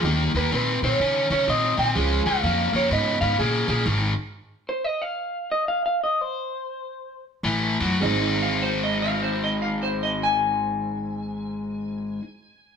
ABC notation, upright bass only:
X:1
M:4/4
L:1/8
Q:"Swing" 1/4=118
K:Ab
V:1 name="Upright bass" clef=bass
E,, E,, B,, B,, D, D, B,, B,, | D,, D,, F,, F,, A,, A,, B,, B,, | A,,, z6 z | z6 =A,,, _G,, |
A,,,8- | A,,,8 |]